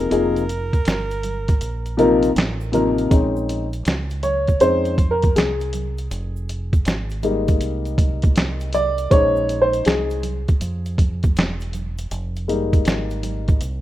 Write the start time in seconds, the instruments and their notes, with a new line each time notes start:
Already playing: upright piano D#4 G#4
0.00 alto saxophone A#4
0.10 fingered electric bass F1, upright piano C3 F3 A#3 D#4 G#4, closed hi-hat, shaker
0.36 closed hi-hat, shaker
0.49 closed hi-hat, shaker
0.73 kick, closed hi-hat, shaker
0.85 fingered electric bass G1, snare, closed hi-hat, shaker
1.11 closed hi-hat, shaker
1.23 closed hi-hat, low conga, shaker
1.48 kick, closed hi-hat, shaker
1.61 fingered electric bass A#1, closed hi-hat, shaker
1.86 closed hi-hat, shaker
1.97 upright piano C3 F3 A#3 D#4 A#4, closed hi-hat, low conga, shaker
2.23 closed hi-hat, high conga, shaker
2.36 fingered electric bass A1, snare, closed hi-hat, shaker
2.61 shaker
2.72 upright piano C3 F3 A#3 D#4 A#4, closed hi-hat, low conga, shaker
2.98 closed hi-hat, shaker
3.10 fingered electric bass A#1, upright piano G#3 C4 C#4 D#4, kick, closed hi-hat, shaker
3.36 shaker
3.49 closed hi-hat, shaker
3.73 closed hi-hat, shaker
3.85 fingered electric bass C#2, snare, closed hi-hat, shaker
4.10 closed hi-hat, shaker
4.23 upright piano C#5, closed hi-hat, low conga, shaker
4.47 kick, closed hi-hat, high conga, shaker
4.60 fingered electric bass F2, upright piano G#3 C4 C#4 D#4 C5, closed hi-hat, shaker
4.85 closed hi-hat, shaker
4.98 kick, closed hi-hat, low conga, shaker
5.11 upright piano A#4
5.22 kick, closed hi-hat, high conga, shaker
5.36 fingered electric bass C2, upright piano G#4, snare, closed hi-hat, shaker
5.61 closed hi-hat, shaker
5.73 closed hi-hat, low conga, shaker
5.98 closed hi-hat, shaker
6.11 fingered electric bass F1, closed hi-hat, shaker
6.36 shaker
6.49 closed hi-hat, shaker
6.73 kick, closed hi-hat, shaker
6.85 fingered electric bass G#1, snare, closed hi-hat, shaker
7.10 closed hi-hat, shaker
7.23 upright piano G3 G#3 A#3 D#4, closed hi-hat, low conga, shaker
7.48 kick, closed hi-hat, high conga, shaker
7.61 fingered electric bass C2, closed hi-hat, shaker
7.85 closed hi-hat, shaker
7.98 kick, closed hi-hat, low conga, shaker
8.22 kick, closed hi-hat, high conga, shaker
8.36 fingered electric bass C2, snare, closed hi-hat, shaker
8.60 closed hi-hat, shaker
8.73 upright piano D5, closed hi-hat, low conga, shaker
8.98 closed hi-hat, shaker
9.10 fingered electric bass A#1, upright piano G#3 C#4 D#4 C5 C#5, kick, closed hi-hat, shaker
9.36 shaker
9.49 closed hi-hat, shaker
9.62 upright piano C5
9.73 closed hi-hat, shaker
9.85 fingered electric bass C2, upright piano G#4, snare, closed hi-hat, shaker
10.10 closed hi-hat, shaker
10.23 closed hi-hat, low conga, shaker
10.48 kick, closed hi-hat, high conga, shaker
10.61 fingered electric bass F2, closed hi-hat, shaker
10.86 closed hi-hat, shaker
10.98 kick, closed hi-hat, low conga, shaker
11.23 kick, closed hi-hat, high conga, shaker
11.36 fingered electric bass E1, snare, closed hi-hat, shaker
11.60 closed hi-hat, shaker
11.73 closed hi-hat, low conga, shaker
11.98 closed hi-hat, shaker
12.11 fingered electric bass F1, closed hi-hat, shaker
12.36 closed hi-hat, shaker
12.48 upright piano G3 G#3 A#3 D#4, closed hi-hat, shaker
12.73 kick, closed hi-hat, shaker
12.85 fingered electric bass G#1, snare, closed hi-hat, shaker
13.10 closed hi-hat, shaker
13.23 closed hi-hat, low conga, shaker
13.48 kick, closed hi-hat, high conga, shaker
13.61 fingered electric bass C2, closed hi-hat, shaker